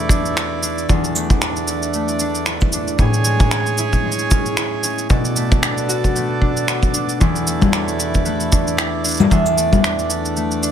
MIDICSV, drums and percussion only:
0, 0, Header, 1, 2, 480
1, 0, Start_track
1, 0, Tempo, 526316
1, 812, Time_signature, 4, 2, 24, 8
1, 9773, End_track
2, 0, Start_track
2, 0, Title_t, "Drums"
2, 85, Note_on_c, 9, 36, 107
2, 95, Note_on_c, 9, 82, 73
2, 177, Note_off_c, 9, 36, 0
2, 186, Note_off_c, 9, 82, 0
2, 232, Note_on_c, 9, 82, 32
2, 324, Note_off_c, 9, 82, 0
2, 337, Note_on_c, 9, 26, 99
2, 337, Note_on_c, 9, 82, 43
2, 428, Note_off_c, 9, 26, 0
2, 428, Note_off_c, 9, 82, 0
2, 574, Note_on_c, 9, 82, 74
2, 665, Note_off_c, 9, 82, 0
2, 713, Note_on_c, 9, 82, 32
2, 804, Note_off_c, 9, 82, 0
2, 815, Note_on_c, 9, 82, 39
2, 816, Note_on_c, 9, 36, 99
2, 906, Note_off_c, 9, 82, 0
2, 907, Note_off_c, 9, 36, 0
2, 951, Note_on_c, 9, 82, 30
2, 1042, Note_off_c, 9, 82, 0
2, 1055, Note_on_c, 9, 82, 78
2, 1146, Note_off_c, 9, 82, 0
2, 1187, Note_on_c, 9, 36, 109
2, 1189, Note_on_c, 9, 82, 30
2, 1278, Note_off_c, 9, 36, 0
2, 1280, Note_off_c, 9, 82, 0
2, 1292, Note_on_c, 9, 26, 90
2, 1293, Note_on_c, 9, 82, 43
2, 1383, Note_off_c, 9, 26, 0
2, 1384, Note_off_c, 9, 82, 0
2, 1426, Note_on_c, 9, 82, 28
2, 1517, Note_off_c, 9, 82, 0
2, 1529, Note_on_c, 9, 82, 70
2, 1620, Note_off_c, 9, 82, 0
2, 1665, Note_on_c, 9, 82, 34
2, 1756, Note_off_c, 9, 82, 0
2, 1766, Note_on_c, 9, 82, 42
2, 1857, Note_off_c, 9, 82, 0
2, 1900, Note_on_c, 9, 82, 29
2, 1992, Note_off_c, 9, 82, 0
2, 2001, Note_on_c, 9, 82, 70
2, 2092, Note_off_c, 9, 82, 0
2, 2142, Note_on_c, 9, 82, 33
2, 2233, Note_off_c, 9, 82, 0
2, 2244, Note_on_c, 9, 26, 98
2, 2245, Note_on_c, 9, 82, 42
2, 2335, Note_off_c, 9, 26, 0
2, 2336, Note_off_c, 9, 82, 0
2, 2378, Note_on_c, 9, 82, 28
2, 2388, Note_on_c, 9, 36, 100
2, 2469, Note_off_c, 9, 82, 0
2, 2479, Note_off_c, 9, 36, 0
2, 2485, Note_on_c, 9, 82, 75
2, 2576, Note_off_c, 9, 82, 0
2, 2623, Note_on_c, 9, 82, 33
2, 2715, Note_off_c, 9, 82, 0
2, 2724, Note_on_c, 9, 82, 40
2, 2725, Note_on_c, 9, 36, 102
2, 2815, Note_off_c, 9, 82, 0
2, 2816, Note_off_c, 9, 36, 0
2, 2860, Note_on_c, 9, 82, 30
2, 2951, Note_off_c, 9, 82, 0
2, 2961, Note_on_c, 9, 82, 82
2, 3052, Note_off_c, 9, 82, 0
2, 3100, Note_on_c, 9, 82, 31
2, 3102, Note_on_c, 9, 36, 114
2, 3191, Note_off_c, 9, 82, 0
2, 3193, Note_off_c, 9, 36, 0
2, 3204, Note_on_c, 9, 26, 91
2, 3205, Note_on_c, 9, 82, 43
2, 3296, Note_off_c, 9, 26, 0
2, 3296, Note_off_c, 9, 82, 0
2, 3342, Note_on_c, 9, 82, 29
2, 3433, Note_off_c, 9, 82, 0
2, 3446, Note_on_c, 9, 82, 80
2, 3537, Note_off_c, 9, 82, 0
2, 3583, Note_on_c, 9, 82, 34
2, 3584, Note_on_c, 9, 36, 63
2, 3674, Note_off_c, 9, 82, 0
2, 3675, Note_off_c, 9, 36, 0
2, 3756, Note_on_c, 9, 82, 42
2, 3819, Note_off_c, 9, 82, 0
2, 3819, Note_on_c, 9, 82, 31
2, 3911, Note_off_c, 9, 82, 0
2, 3929, Note_on_c, 9, 82, 73
2, 3933, Note_on_c, 9, 36, 111
2, 4020, Note_off_c, 9, 82, 0
2, 4024, Note_off_c, 9, 36, 0
2, 4066, Note_on_c, 9, 82, 31
2, 4157, Note_off_c, 9, 82, 0
2, 4169, Note_on_c, 9, 26, 101
2, 4169, Note_on_c, 9, 82, 47
2, 4260, Note_off_c, 9, 26, 0
2, 4261, Note_off_c, 9, 82, 0
2, 4410, Note_on_c, 9, 82, 79
2, 4501, Note_off_c, 9, 82, 0
2, 4546, Note_on_c, 9, 82, 34
2, 4637, Note_off_c, 9, 82, 0
2, 4649, Note_on_c, 9, 82, 40
2, 4652, Note_on_c, 9, 36, 106
2, 4740, Note_off_c, 9, 82, 0
2, 4743, Note_off_c, 9, 36, 0
2, 4786, Note_on_c, 9, 82, 30
2, 4877, Note_off_c, 9, 82, 0
2, 4891, Note_on_c, 9, 82, 74
2, 4982, Note_off_c, 9, 82, 0
2, 5032, Note_on_c, 9, 36, 116
2, 5032, Note_on_c, 9, 82, 31
2, 5123, Note_off_c, 9, 36, 0
2, 5123, Note_off_c, 9, 82, 0
2, 5134, Note_on_c, 9, 26, 95
2, 5134, Note_on_c, 9, 82, 43
2, 5225, Note_off_c, 9, 26, 0
2, 5226, Note_off_c, 9, 82, 0
2, 5268, Note_on_c, 9, 82, 31
2, 5359, Note_off_c, 9, 82, 0
2, 5376, Note_on_c, 9, 82, 72
2, 5467, Note_off_c, 9, 82, 0
2, 5512, Note_on_c, 9, 36, 54
2, 5512, Note_on_c, 9, 82, 34
2, 5603, Note_off_c, 9, 36, 0
2, 5603, Note_off_c, 9, 82, 0
2, 5617, Note_on_c, 9, 82, 38
2, 5708, Note_off_c, 9, 82, 0
2, 5851, Note_on_c, 9, 36, 59
2, 5942, Note_off_c, 9, 36, 0
2, 5990, Note_on_c, 9, 82, 35
2, 6081, Note_off_c, 9, 82, 0
2, 6094, Note_on_c, 9, 26, 95
2, 6094, Note_on_c, 9, 82, 48
2, 6185, Note_off_c, 9, 26, 0
2, 6186, Note_off_c, 9, 82, 0
2, 6226, Note_on_c, 9, 36, 85
2, 6227, Note_on_c, 9, 82, 28
2, 6317, Note_off_c, 9, 36, 0
2, 6318, Note_off_c, 9, 82, 0
2, 6331, Note_on_c, 9, 82, 75
2, 6422, Note_off_c, 9, 82, 0
2, 6466, Note_on_c, 9, 82, 32
2, 6557, Note_off_c, 9, 82, 0
2, 6575, Note_on_c, 9, 82, 38
2, 6577, Note_on_c, 9, 36, 112
2, 6666, Note_off_c, 9, 82, 0
2, 6669, Note_off_c, 9, 36, 0
2, 6710, Note_on_c, 9, 82, 29
2, 6801, Note_off_c, 9, 82, 0
2, 6814, Note_on_c, 9, 82, 77
2, 6905, Note_off_c, 9, 82, 0
2, 6946, Note_on_c, 9, 64, 52
2, 6947, Note_on_c, 9, 82, 30
2, 6951, Note_on_c, 9, 36, 89
2, 7038, Note_off_c, 9, 64, 0
2, 7038, Note_off_c, 9, 82, 0
2, 7042, Note_off_c, 9, 36, 0
2, 7051, Note_on_c, 9, 26, 86
2, 7052, Note_on_c, 9, 82, 40
2, 7142, Note_off_c, 9, 26, 0
2, 7143, Note_off_c, 9, 82, 0
2, 7189, Note_on_c, 9, 82, 29
2, 7280, Note_off_c, 9, 82, 0
2, 7295, Note_on_c, 9, 82, 71
2, 7386, Note_off_c, 9, 82, 0
2, 7428, Note_on_c, 9, 82, 31
2, 7432, Note_on_c, 9, 36, 59
2, 7519, Note_off_c, 9, 82, 0
2, 7523, Note_off_c, 9, 36, 0
2, 7529, Note_on_c, 9, 82, 39
2, 7620, Note_off_c, 9, 82, 0
2, 7663, Note_on_c, 9, 82, 29
2, 7754, Note_off_c, 9, 82, 0
2, 7772, Note_on_c, 9, 82, 75
2, 7774, Note_on_c, 9, 36, 97
2, 7863, Note_off_c, 9, 82, 0
2, 7865, Note_off_c, 9, 36, 0
2, 7912, Note_on_c, 9, 82, 32
2, 8003, Note_off_c, 9, 82, 0
2, 8012, Note_on_c, 9, 26, 93
2, 8012, Note_on_c, 9, 82, 42
2, 8103, Note_off_c, 9, 26, 0
2, 8103, Note_off_c, 9, 82, 0
2, 8251, Note_on_c, 9, 82, 74
2, 8282, Note_off_c, 9, 82, 0
2, 8282, Note_on_c, 9, 82, 56
2, 8308, Note_off_c, 9, 82, 0
2, 8308, Note_on_c, 9, 82, 46
2, 8335, Note_off_c, 9, 82, 0
2, 8335, Note_on_c, 9, 82, 36
2, 8363, Note_off_c, 9, 82, 0
2, 8363, Note_on_c, 9, 82, 33
2, 8391, Note_off_c, 9, 82, 0
2, 8391, Note_on_c, 9, 64, 74
2, 8391, Note_on_c, 9, 82, 33
2, 8482, Note_off_c, 9, 64, 0
2, 8483, Note_off_c, 9, 82, 0
2, 8494, Note_on_c, 9, 36, 101
2, 8495, Note_on_c, 9, 82, 41
2, 8585, Note_off_c, 9, 36, 0
2, 8586, Note_off_c, 9, 82, 0
2, 8628, Note_on_c, 9, 82, 27
2, 8719, Note_off_c, 9, 82, 0
2, 8736, Note_on_c, 9, 82, 73
2, 8827, Note_off_c, 9, 82, 0
2, 8871, Note_on_c, 9, 36, 95
2, 8872, Note_on_c, 9, 64, 49
2, 8873, Note_on_c, 9, 82, 28
2, 8962, Note_off_c, 9, 36, 0
2, 8963, Note_off_c, 9, 64, 0
2, 8964, Note_off_c, 9, 82, 0
2, 8976, Note_on_c, 9, 26, 88
2, 8976, Note_on_c, 9, 82, 40
2, 9067, Note_off_c, 9, 26, 0
2, 9068, Note_off_c, 9, 82, 0
2, 9111, Note_on_c, 9, 82, 26
2, 9202, Note_off_c, 9, 82, 0
2, 9212, Note_on_c, 9, 82, 72
2, 9303, Note_off_c, 9, 82, 0
2, 9351, Note_on_c, 9, 82, 32
2, 9443, Note_off_c, 9, 82, 0
2, 9454, Note_on_c, 9, 82, 39
2, 9545, Note_off_c, 9, 82, 0
2, 9588, Note_on_c, 9, 82, 29
2, 9679, Note_off_c, 9, 82, 0
2, 9696, Note_on_c, 9, 82, 71
2, 9773, Note_off_c, 9, 82, 0
2, 9773, End_track
0, 0, End_of_file